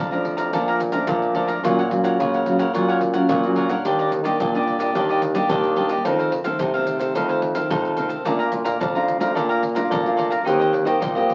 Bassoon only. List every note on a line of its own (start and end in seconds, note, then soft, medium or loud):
0.00 0.33 F2 medium
0.37 0.50 F2 medium
0.53 1.00 A#2 medium
1.08 1.55 A#2 loud
1.63 1.99 A#2 loud
2.03 2.15 A#2 medium
2.19 2.54 C#3 medium
2.59 2.71 C#3 medium
2.74 3.21 A#2 medium
3.29 3.76 A#2 loud
3.84 4.20 D#2 medium
4.23 4.36 D#3 medium
4.39 4.75 A#2 medium
4.79 4.92 A#2 medium
4.94 5.35 D#2 medium
5.49 5.96 D#2 loud
6.04 6.40 F2 medium
6.59 6.95 C3 medium
7.00 7.12 C3 medium
7.15 7.62 F2 medium
7.70 8.17 F2 medium
8.26 8.61 A#2 medium
8.65 8.78 A#2 medium
8.80 9.15 F2 medium
9.20 9.32 F2 medium
9.36 9.83 A#2 medium
9.90 10.37 A#2 loud
10.46 10.81 D#2 loud
10.86 10.98 D#3 medium
11.01 11.34 A#2 medium